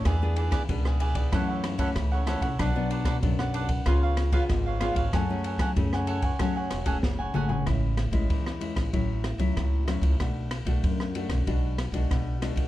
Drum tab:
RD |x-xxx-xxx-xxx-xx|x-xxx-xxx-xxx-xx|x-xxx-xxx-xx----|x-xxx-xxx-xxx-xx|
SD |r--r-r--r-r-r-r-|r--r-r--r-r-r-r-|r--r-r--r-r-o---|r-r--r-r--r-r-r-|
T2 |----------------|----------------|--------------o-|----------------|
FT |----------------|----------------|---------------o|----------------|
BD |o--oo--oo--oo--o|o--oo--oo--oo--o|o--oo--oo--oo---|o--oo--oo--oo--o|

RD |x-xxx-xxx-xxx-xx|
SD |r-r--r-r--r-r-r-|
T2 |----------------|
FT |----------------|
BD |o--oo--oo--oo--o|